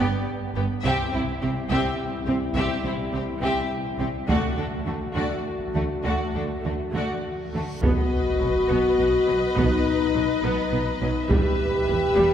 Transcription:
0.00 0.67 G3 soft
0.00 0.25 B3 medium
0.00 0.67 B3 soft
0.00 0.25 G4 soft
0.00 0.24 D5 soft
0.55 0.63 G1 soft
0.55 0.64 G2 soft
0.55 0.64 B3 soft
0.55 0.65 B3 soft
0.55 0.64 G4 soft
0.83 0.92 C2 soft
0.83 0.92 C3 medium
0.83 4.24 G3 medium
0.83 1.11 C4 soft
0.83 4.24 E4 medium
0.83 1.11 G4 medium
0.83 1.10 E5 medium
0.83 taiko soft
1.12 1.21 C2 soft
1.12 1.22 C3 soft
1.12 1.21 C4 soft
1.12 1.22 E4 soft
1.12 1.20 C5 soft
1.41 1.49 C2 soft
1.41 1.50 C3 soft
1.41 1.50 C4 soft
1.41 1.51 C4 soft
1.41 1.50 G4 soft
1.69 1.77 C2 medium
1.69 1.78 C3 medium
1.69 1.97 C4 soft
1.69 1.97 G4 medium
1.69 1.96 E5 soft
2.26 2.34 C2 soft
2.26 2.36 C3 soft
2.26 2.36 C4 soft
2.26 2.37 C4 soft
2.26 2.34 G4 soft
2.55 2.63 C2 medium
2.55 2.63 C3 medium
2.55 2.82 C4 soft
2.55 2.83 G4 medium
2.55 2.82 E5 soft
2.83 2.91 C2 soft
2.83 2.92 C3 soft
2.83 2.92 C4 soft
2.83 2.94 E4 soft
2.83 2.92 C5 soft
3.12 3.20 C2 soft
3.12 3.20 C3 soft
3.12 3.20 C4 soft
3.12 3.22 C4 soft
3.12 3.23 G4 soft
3.40 3.49 C2 soft
3.40 3.49 C3 soft
3.40 3.68 C4 soft
3.40 3.69 G4 medium
3.44 3.70 E5 soft
3.98 4.07 C2 soft
3.98 4.07 C3 soft
3.98 4.06 C4 soft
3.98 4.08 C4 soft
3.98 4.08 G4 soft
4.28 4.36 D2 soft
4.28 4.36 D3 medium
4.28 4.55 A3 soft
4.28 7.49 A3 soft
4.28 4.55 F#4 soft
4.28 7.49 F#4 medium
4.28 4.56 D5 soft
4.28 taiko soft
4.56 4.65 D2 soft
4.56 4.65 D3 soft
4.56 4.64 A3 soft
4.56 4.65 D4 soft
4.56 4.65 A4 soft
4.86 4.94 D2 soft
4.86 4.94 D3 soft
4.86 4.94 A3 soft
4.86 4.95 F#4 soft
5.14 5.23 D2 soft
5.14 5.23 D3 soft
5.14 5.42 A3 soft
5.14 5.42 F#4 soft
5.14 5.44 D5 soft
5.60 taiko soft
5.74 5.82 D2 soft
5.74 5.83 D3 soft
5.74 5.82 A3 soft
5.74 5.84 F#4 soft
6.04 6.12 D2 soft
6.04 6.13 D3 soft
6.04 6.32 A3 soft
6.04 6.32 F#4 soft
6.04 6.32 D5 soft
6.04 reverse cymbal soft
6.33 6.42 D2 soft
6.33 6.43 D3 soft
6.33 6.41 A3 soft
6.33 6.42 D4 soft
6.33 6.43 A4 soft
6.62 6.72 D2 soft
6.62 6.73 D3 soft
6.62 6.70 A3 soft
6.62 6.73 A3 soft
6.66 6.74 F#4 soft
6.92 7.01 D2 soft
6.92 7.02 D3 soft
6.92 7.20 A3 soft
6.92 7.22 F#4 soft
6.96 7.23 D5 soft
7.52 7.61 D2 soft
7.52 7.62 D3 soft
7.52 7.60 A3 soft
7.52 7.62 A3 soft
7.57 7.65 F#4 soft
7.82 7.90 B1 medium
7.82 7.91 B2 medium
7.82 8.09 B3 soft
7.82 9.53 F#4 medium
7.82 11.26 B4 medium
7.82 11.27 D#5 soft
7.82 taiko medium
7.82 sub drop medium
8.39 8.48 B1 soft
8.39 8.49 B2 soft
8.39 8.47 F#3 soft
8.68 8.78 B1 medium
8.68 8.77 B2 soft
8.68 8.96 B3 medium
8.98 9.07 B1 soft
8.98 9.07 B2 soft
8.98 9.06 B3 soft
9.26 9.36 B1 soft
9.26 9.36 B2 soft
9.26 9.34 F#3 soft
9.55 9.66 B1 medium
9.55 9.65 B2 medium
9.55 9.82 B3 soft
9.55 taiko medium
9.60 11.00 D#4 medium
10.13 10.23 B1 soft
10.13 10.23 B2 soft
10.13 10.21 F#3 soft
10.42 10.50 B1 soft
10.42 10.51 B2 medium
10.42 10.70 B3 medium
10.72 10.80 B1 soft
10.72 10.80 B2 soft
10.72 10.80 B3 soft
11.01 11.09 B1 soft
11.01 11.09 B2 soft
11.01 11.09 F#3 soft
11.30 11.38 E1 medium
11.30 11.38 E2 medium
11.30 11.57 G3 medium
11.30 12.34 G4 medium
11.30 12.34 B4 medium
11.30 12.34 E5 soft
11.30 taiko medium
11.87 11.96 E1 soft
11.87 11.97 E2 soft
11.87 11.95 E3 soft
12.16 12.25 E1 medium
12.16 12.25 E2 medium
12.16 12.34 G3 medium

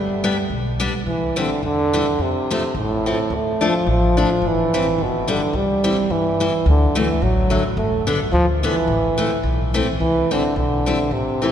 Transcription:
0.00 0.30 G1 medium
0.00 0.51 G3 medium
0.24 0.36 G3 medium
0.24 0.36 B3 soft
0.24 0.36 D4 medium
0.50 0.87 B1 medium
0.80 0.92 G3 medium
0.80 0.92 B3 medium
0.80 0.92 D4 medium
1.07 1.27 C2 medium
1.07 1.40 E3 medium
1.36 1.64 D3 medium
1.36 1.49 E3 medium
1.36 1.49 G3 medium
1.36 1.49 C4 medium
1.63 2.00 E2 medium
1.63 2.23 D3 medium
1.93 2.05 E3 medium
1.93 2.06 G3 soft
1.93 2.06 C4 medium
2.19 2.39 F2 medium
2.19 2.76 C3 medium
2.51 2.62 F3 medium
2.51 2.62 A3 medium
2.51 2.62 C4 medium
2.75 3.11 A1 medium
2.75 3.36 A2 medium
3.06 3.17 F3 medium
3.06 3.18 A3 soft
3.06 3.18 C4 medium
3.30 3.50 D2 medium
3.34 3.63 A3 medium
3.61 3.73 F3 soft
3.61 3.73 A3 medium
3.61 3.73 D4 medium
3.66 3.87 F3 medium
3.87 4.23 A1 medium
3.91 4.49 F3 medium
4.17 4.29 F3 soft
4.17 4.29 A3 medium
4.17 4.29 D4 medium
4.42 4.62 G1 medium
4.47 5.04 E3 medium
4.74 4.85 E3 medium
4.74 4.85 G3 soft
4.74 4.85 C4 medium
4.98 5.35 G1 medium
5.03 5.33 B2 medium
5.28 5.40 D3 medium
5.28 5.57 D3 medium
5.28 5.40 G3 soft
5.28 5.40 B3 soft
5.53 5.74 C2 medium
5.53 6.13 G3 medium
5.84 5.96 E3 medium
5.84 5.96 G3 soft
5.84 5.96 C4 medium
6.10 6.46 G2 medium
6.10 6.67 E3 medium
6.40 6.52 E3 medium
6.40 6.52 G3 soft
6.40 6.52 C4 medium
6.66 6.86 D2 medium
6.66 7.00 D3 medium
6.95 7.07 D3 medium
6.95 7.24 E3 medium
6.95 7.07 F#3 medium
6.95 7.07 A3 medium
7.22 7.58 A1 medium
7.22 7.61 F#3 medium
7.50 7.62 D3 medium
7.50 7.62 F#3 soft
7.50 7.62 A3 medium
7.77 7.97 G1 medium
7.77 8.05 A3 medium
8.07 8.18 D3 medium
8.07 8.18 G3 soft
8.07 8.19 B3 medium
8.32 8.69 D2 medium
8.32 8.46 F3 loud
8.61 8.74 D3 medium
8.61 9.39 E3 medium
8.61 8.74 G3 soft
8.61 8.75 B3 medium
8.87 9.08 A1 medium
9.18 9.29 E3 medium
9.18 9.30 A3 medium
9.18 9.30 C4 medium
9.43 9.80 B1 medium
9.74 9.86 E3 medium
9.74 9.86 A3 medium
9.74 9.86 C4 medium
10.00 10.20 C2 medium
10.00 10.33 E3 medium
10.31 10.57 D3 medium
10.31 10.42 E3 medium
10.31 10.42 G3 soft
10.31 10.42 C4 medium
10.56 10.92 B1 medium
10.56 11.14 D3 medium
10.86 10.98 E3 medium
10.86 10.98 G3 soft
10.86 10.98 C4 medium
11.11 11.31 A1 medium
11.11 11.52 C3 medium
11.42 11.52 E3 soft
11.42 11.52 A3 soft
11.42 11.52 C4 medium

